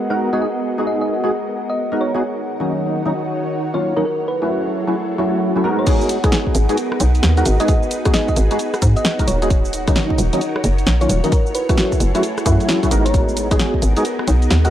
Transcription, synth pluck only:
0.10 0.19 F#5 medium
0.33 0.38 D#5 medium
0.42 0.51 D#5 medium
0.87 0.96 D#5 medium
1.01 1.07 D#5 medium
1.70 1.78 D#5 medium
2.01 2.29 C#5 medium
3.74 3.83 C#5 medium
3.97 4.02 A#4 medium
4.05 4.14 A#4 medium
4.28 4.42 B4 loud
5.79 5.87 C#5 medium
7.38 7.46 F#5 medium
7.60 7.65 D#5 medium
7.68 7.78 D#5 medium
8.14 8.23 D#5 medium
8.29 8.34 D#5 medium
8.97 9.05 D#5 medium
9.28 9.56 C#5 medium
11.01 11.10 C#5 loud
11.24 11.29 A#4 medium
11.32 11.42 A#4 medium
11.55 11.70 B4 loud
13.06 13.20 C#5 loud
14.65 14.70 F#5 medium

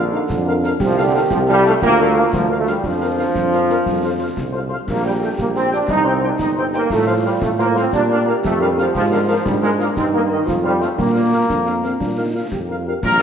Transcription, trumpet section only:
0.14 0.20 F5 medium
0.48 0.54 F5 medium
0.64 0.70 F5 medium
0.97 1.04 F5 medium
1.15 1.21 F5 medium
1.49 1.55 F5 medium
1.67 1.73 F5 medium
2.01 2.06 F5 medium
2.17 2.23 F5 medium
2.51 2.57 F5 soft
2.67 2.73 F5 medium
3.00 3.06 F5 medium
3.17 3.23 F5 medium
3.53 3.59 F5 soft
3.70 3.76 F5 soft
4.04 4.10 F5 soft
4.22 4.27 F5 soft
4.56 4.62 F5 soft
4.71 4.77 F5 soft
5.06 5.12 G5 soft
5.24 5.29 G5 soft
5.57 5.63 G5 soft
5.72 5.78 G5 medium
6.06 6.12 G5 soft
6.24 6.30 G5 soft
6.58 6.64 G5 soft
6.73 6.80 G5 medium
7.07 7.13 F5 medium
7.24 7.31 F5 medium
7.59 7.65 F5 soft
7.77 7.83 F5 medium
8.11 8.17 F5 medium
8.28 8.34 F5 medium
8.61 8.67 F5 medium
8.79 8.85 F5 medium
9.11 9.17 F5 medium
9.28 9.34 F5 medium
9.63 9.69 F5 medium
9.81 9.87 F5 medium
10.15 10.21 D#5 medium
10.32 10.38 D#5 medium
10.64 10.70 F5 soft
10.81 10.87 F5 medium
11.14 11.20 F5 soft
11.33 11.39 F5 medium
11.66 11.72 F5 soft
11.85 11.91 F5 soft
12.18 12.24 F5 soft
12.35 12.41 F5 soft
12.71 12.76 F5 soft
12.88 12.93 F5 soft
13.04 13.19 A#4 medium

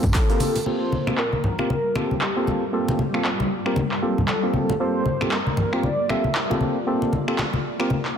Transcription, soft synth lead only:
0.15 0.68 A4 loud
0.67 1.18 C5 loud
1.18 1.66 A#4 medium
1.70 1.97 A#4 loud
1.96 2.48 G4 medium
4.28 4.77 A4 medium
4.80 5.34 C5 loud
5.32 5.85 A#4 medium
5.84 6.11 D5 loud
6.09 6.61 E5 loud

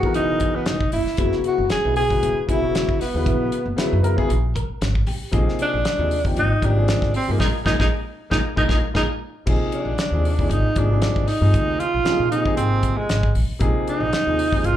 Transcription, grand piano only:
0.03 0.73 C#3 medium
0.03 0.73 E3 medium
0.03 0.73 F#3 medium
0.03 0.73 B3 medium
0.03 0.74 A#4 medium
1.17 1.63 C#3 medium
1.17 1.63 F#3 medium
1.17 1.63 B3 medium
1.17 1.63 E4 medium
1.17 1.64 F#4 medium
1.84 2.01 C#3 medium
1.84 2.01 F#3 medium
1.84 2.02 B3 medium
1.84 2.02 E4 medium
1.84 2.02 F#4 medium
2.09 2.36 C#3 medium
2.09 2.37 F#3 medium
2.09 2.37 B3 medium
2.09 2.37 E4 medium
2.09 2.37 B4 medium
2.47 2.57 C#3 medium
2.47 2.58 F#3 medium
2.47 2.58 B3 medium
2.47 2.58 E4 medium
2.47 2.58 F#4 medium
2.61 2.96 C#3 medium
2.61 2.96 F#3 medium
2.61 2.97 B3 medium
2.61 2.97 E4 medium
2.61 2.97 F#4 medium
3.14 3.57 C#3 medium
3.14 3.57 F#3 medium
3.14 3.58 B3 medium
3.14 3.58 E4 medium
3.14 3.58 B4 medium
3.76 3.95 C#3 medium
3.76 3.96 F#3 medium
3.76 3.96 B3 medium
3.76 3.96 E4 medium
3.76 3.96 B4 medium
4.02 4.13 C#3 medium
4.02 4.13 F#3 medium
4.02 4.13 B3 medium
4.02 4.13 E4 medium
4.02 4.13 A#4 medium
4.16 4.28 C#3 medium
4.16 4.29 F#3 medium
4.16 4.29 B3 medium
4.16 4.30 E4 medium
4.16 4.30 G#4 loud
5.31 5.77 C3 medium
5.31 5.77 F3 medium
5.31 5.77 A#3 medium
5.31 5.77 D#4 medium
5.31 5.78 G#4 medium
5.97 6.15 C3 medium
5.97 6.15 F3 medium
5.97 6.15 A#3 medium
5.97 6.16 D#4 medium
5.97 6.16 G#4 medium
6.25 6.51 C3 medium
6.25 6.51 F3 medium
6.25 6.51 A#3 medium
6.25 6.52 D#4 medium
6.25 6.52 G4 medium
6.61 6.71 C3 medium
6.61 6.72 F3 medium
6.61 6.72 A#3 medium
6.61 6.72 D#4 medium
6.61 6.73 G4 medium
6.76 7.11 C3 medium
6.76 7.11 D#3 medium
6.76 7.11 F3 medium
6.76 7.11 A#3 medium
6.76 7.11 G#4 medium
7.27 7.40 C3 medium
7.27 7.40 F3 medium
7.27 7.37 A#3 medium
7.27 7.37 D#4 medium
7.27 7.41 G#4 medium
7.39 7.48 G#3 medium
7.39 7.48 A#3 medium
7.39 7.48 D#4 medium
7.64 7.74 G#3 medium
7.64 7.74 A#3 medium
7.64 7.74 D#4 medium
7.78 7.87 G#3 medium
7.78 7.87 A#3 medium
7.78 7.87 D#4 medium
8.30 8.39 G#3 medium
8.30 8.38 A#3 medium
8.30 8.39 D#4 medium
8.56 8.64 G#3 medium
8.56 8.64 A#3 medium
8.56 8.64 D#4 medium
8.68 8.78 G#3 medium
8.68 8.78 A#3 medium
8.68 8.78 D#4 medium
8.94 9.04 G#3 medium
8.94 9.04 A#3 medium
8.94 9.03 D#4 medium
9.46 9.91 C3 medium
9.46 9.91 F3 medium
9.46 9.91 A#3 medium
9.46 9.92 D#4 medium
9.46 9.92 G#4 medium
10.12 10.29 C3 medium
10.12 10.29 F3 medium
10.12 10.30 A#3 medium
10.12 10.30 D#4 medium
10.12 10.30 G#4 medium
10.38 10.65 C3 medium
10.38 10.65 F3 medium
10.38 10.65 A#3 medium
10.38 10.66 D#4 medium
10.38 10.66 G#4 medium
10.76 10.86 C3 medium
10.76 10.86 F3 medium
10.76 10.86 A#3 medium
10.76 10.86 D#4 medium
10.76 10.87 G#4 medium
10.90 11.24 C3 medium
10.90 11.25 F3 medium
10.90 11.25 A#3 medium
10.90 11.25 D#4 medium
10.90 11.26 G#4 medium
11.41 11.85 C3 medium
11.41 11.85 F3 medium
11.41 11.85 A#3 medium
11.41 11.85 D#4 medium
11.41 11.86 G#4 medium
12.04 12.23 C3 medium
12.04 12.23 F3 medium
12.04 12.24 A#3 medium
12.04 12.24 D#4 medium
12.04 12.24 G#4 medium
12.32 12.41 C3 medium
12.32 12.41 F3 medium
12.32 12.41 A#3 medium
12.32 12.42 D#4 medium
12.32 12.42 G#4 medium
12.45 13.15 C3 medium
12.45 13.14 F3 medium
12.45 13.15 A#3 medium
12.45 13.15 D#4 medium
12.45 13.15 G#4 medium
13.59 14.05 C3 medium
13.59 14.05 F3 medium
13.59 14.05 A#3 medium
13.59 14.05 D#4 medium
13.59 14.06 G#4 loud
14.26 14.43 C3 medium
14.26 14.44 F3 medium
14.26 14.44 A#3 medium
14.26 14.44 D#4 medium
14.26 14.44 G#4 medium
14.52 14.77 C3 medium
14.52 14.77 F3 medium
14.52 14.77 A#3 medium
14.52 14.77 D#4 medium
14.52 14.77 G#4 medium

